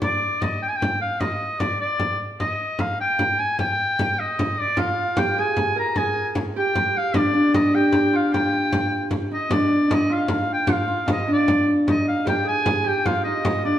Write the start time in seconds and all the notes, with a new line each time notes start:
Already playing: D#4 G4
0.02 D5, frame drum
0.42 D#5, frame drum
0.63 G5
0.69 G#5
0.76 G5
0.82 frame drum
1.02 F5
1.20 D#5, frame drum
1.60 D5, frame drum
1.81 D5
2.00 frame drum
2.40 D#5, frame drum
2.79 F5, frame drum
3.01 G5
3.19 frame drum
3.39 G#5
3.59 G5, frame drum
3.80 frame drum
3.99 frame drum
4.20 D#5
4.39 frame drum
4.58 D5, frame drum
4.77 F4 F5, frame drum
5.17 G4 G5, frame drum
5.38 G#4 G#5
5.57 frame drum
5.76 A#4 A#5
5.96 G#4 G#5, frame drum
6.35 frame drum
6.56 G4 G5
6.75 frame drum
6.97 F5
7.14 D4 D5, frame drum
7.34 D4
7.54 D#5, frame drum
7.74 G4 G5
7.92 G4, frame drum
8.13 F4 F5
8.32 G4 G5, frame drum
8.53 frame drum
8.73 frame drum
8.93 frame drum
9.11 frame drum
9.31 D#4 D#5, frame drum
9.50 D4 D5, frame drum
9.88 D#4, frame drum
9.93 D#5
10.10 F4 F5, frame drum
10.28 frame drum
10.53 G5
10.67 F4, frame drum
10.72 F5
10.88 F4
11.06 D#4, frame drum
11.13 D#5
11.28 D4, frame drum
11.33 D5
11.48 frame drum
11.87 D#4 D#5, frame drum
12.08 F5
12.25 G4 G5, frame drum
12.45 G#4 G#5, frame drum
12.65 G#4, frame drum
12.84 G4 G5
13.05 F4 F5, frame drum
13.24 D#4 D#5, frame drum
13.45 frame drum
13.65 D4 D5